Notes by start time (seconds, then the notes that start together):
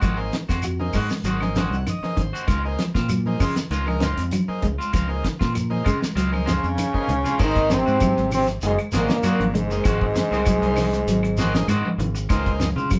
0.01 G#1 D#3 F3 G#3 C4 F#4, kick, closed hi-hat, high conga, claves, shekere
0.17 A#3 D#4 G#4 C5, muted clean electric guitar stroke
0.32 D#3, muted clean electric guitar stroke, snare, closed hi-hat, shekere
0.48 F2 G#3 C4 F#4, kick, snare, shekere
0.62 F#4, muted clean electric guitar stroke, closed hi-hat, high conga, claves, shekere
0.79 A#3 D#4 G#4 C5, high conga
0.93 G#2 D#3 G#3 F#4, kick, snare, open hi-hat, claves, shekere
1.09 muted clean electric guitar stroke, snare, shekere
1.24 G#1 D#3 F#3 G#3 C4 F#4, closed hi-hat, high conga, shekere
1.41 A#3 D#4 G#4 C5, muted clean electric guitar stroke, snare, high conga, claves
1.56 D#3 F3 G#3 C4 F#4 G#5, snare, closed hi-hat, high conga, shekere
1.70 C2 F#5, shekere
1.87 D#3 D#5, muted clean electric guitar stroke, closed hi-hat, high conga, claves, shekere
2.02 A#3 D#4 G#4 C5, muted fingered electric bass stroke, muted clean electric guitar stroke, snare, high conga
2.17 G#1 D#3 C5, muted clean electric guitar stroke, kick, closed hi-hat, high conga, shekere
2.33 G#3 C4 F#4, shekere
2.47 C#2 D#3 G#3 C4 F4, kick, closed hi-hat, high conga, claves, shekere
2.64 A#3 D#4 G#4 C5, muted clean electric guitar stroke
2.79 F3, muted clean electric guitar stroke, snare, closed hi-hat, shekere
2.94 A#2 C4 F4, kick, snare, shekere
3.08 F#3, muted clean electric guitar stroke, closed hi-hat, high conga, claves, shekere
3.26 A#3 D#4 G#4 C5, high conga
3.40 C#3 F3 G#3 C4 F4, kick, open hi-hat, claves, shekere
3.55 muted clean electric guitar stroke, snare, closed hi-hat, shekere
3.70 C#2 D#3 G#3 C4 F4, closed hi-hat, high conga, shekere
3.86 A#3 D#4 G#4 A#4, muted clean electric guitar stroke, high conga, claves
4.00 G#3 C4 F4, snare, closed hi-hat, high conga, shekere
4.17 F2, closed hi-hat, shekere
4.31 F#3, muted clean electric guitar stroke, closed hi-hat, high conga, claves, shekere
4.48 A#3 D#4 G#4 C5, muted fingered electric bass stroke, muted clean electric guitar stroke
4.62 C#2 G#3, muted clean electric guitar stroke, kick, closed hi-hat, high conga, shekere
4.78 C4 F4, shekere
4.93 C#2 F3 G#3 C4 F4, kick, snare, closed hi-hat, high conga, claves, shekere
5.09 A#3 D#4 G#4 C5, muted clean electric guitar stroke
5.23 D#3, muted clean electric guitar stroke, kick, snare, closed hi-hat, shekere
5.39 A#2 C4 F4, kick, snare, shekere
5.54 F3, muted clean electric guitar stroke, closed hi-hat, high conga, claves, shekere
5.70 A#3 D#4 G#4 C5, high conga
5.84 C#3 G#3 C4 F4, kick, closed hi-hat, claves, shekere
6.00 muted clean electric guitar stroke, snare, shekere
6.15 C#2 F#3 G#3 C4 F4, snare, closed hi-hat, high conga, shekere
6.32 A#3 D#4 G#4 C5, muted clean electric guitar stroke, high conga, claves
6.45 C#3 F3 G#3 C4 C#4 F4, snare, closed hi-hat, high conga, shekere
6.50 C#3
6.63 F2, shekere
6.77 D#3, muted clean electric guitar stroke, closed hi-hat, high conga, claves, shekere
6.93 A#3 D#4 G#4 C5, muted clean electric guitar stroke, muted fingered electric bass stroke, kick
7.07 C#2 D#3, muted clean electric guitar stroke, closed hi-hat, low conga, shekere
7.24 C4 F4, snare, low conga, shekere
7.38 G#1 D#3 G#3 A#3 C4 D#4 G#4 C5, muted clean electric guitar stroke, kick, crash, claves, shekere
7.44 D#3
7.56 kick, snare, closed hi-hat
7.70 C3 F3 C4, muted clean electric guitar stroke, snare, closed hi-hat, high conga, shekere
7.77 C3
7.86 G#2 G#3 C4 F#4, shekere
7.99 F#3, muted clean electric guitar stroke, kick, closed hi-hat, high conga, claves, shekere
8.17 G#1, muted clean electric guitar stroke, snare
8.31 C3 F3 C4, open hi-hat, high conga, low conga, claves, shekere
8.36 C3
8.47 muted clean electric guitar stroke, snare, closed hi-hat, shekere
8.61 F#1 G#2 D#3 A#3 D#4 G#4 C5, closed hi-hat, shekere
8.66 G#2 G#3
8.79 muted clean electric guitar stroke, closed hi-hat, claves
8.92 G#1 A#2 D#3 F3 G#3 A#3 C4 D#4 F#4 G#4 C5, snare, closed hi-hat, shekere
8.97 A#2 A#3
9.09 muted clean electric guitar stroke, snare, closed hi-hat, high conga, shekere
9.23 D#3 F#3 G#3 C4 F#4, muted fingered electric bass stroke, closed hi-hat, claves, shekere
9.39 G#1, closed hi-hat, high conga
9.54 G#2 G#3, muted clean electric guitar stroke, closed hi-hat, high conga, low conga, shekere
9.70 F#1 A#3 D#4 G#4 C5, muted clean electric guitar stroke, shekere
9.84 G#1 D#3 F3 G#3 C4 F#4, kick, closed hi-hat, claves, shekere
10.01 kick
10.14 D#3 G#4 C5, muted clean electric guitar stroke, snare, closed hi-hat, high conga, shekere
10.31 C2 G#3 A#3 C4 D#4 F#4 G#4 C5, snare, low conga, shekere
10.45 F#3, muted clean electric guitar stroke, kick, closed hi-hat, claves, shekere
10.61 C2 A#3 D#4 G#4 C5, muted clean electric guitar stroke, closed hi-hat
10.76 G#3, snare, open hi-hat, high conga, low conga, claves, shekere
10.93 muted clean electric guitar stroke, snare, closed hi-hat, shekere
11.07 G#1 F#3, snare, closed hi-hat, shekere
11.23 muted clean electric guitar stroke, closed hi-hat, claves
11.37 D#3 F3 G#3 A#3 C4 D#4 F#4 G#4 C5, snare, closed hi-hat, shekere
11.54 muted clean electric guitar stroke, snare, high conga, shekere
11.67 G#2 D#3 G#3 C4 F#4, closed hi-hat, claves, shekere
11.86 high conga
11.98 G#1 D#3, muted clean electric guitar stroke, closed hi-hat, high conga, low conga, shekere
12.15 muted clean electric guitar stroke, closed hi-hat, shekere
12.29 C#2 D#3 G#3 A#3 C4 D#4 F4 G#4 C5, kick, closed hi-hat, claves, shekere
12.46 kick, closed hi-hat
12.59 F3, muted clean electric guitar stroke, snare, closed hi-hat, high conga, shekere
12.76 C#3 C4 F4, low conga, shekere
12.90 F#3, muted clean electric guitar stroke, kick, closed hi-hat, high conga, claves, shekere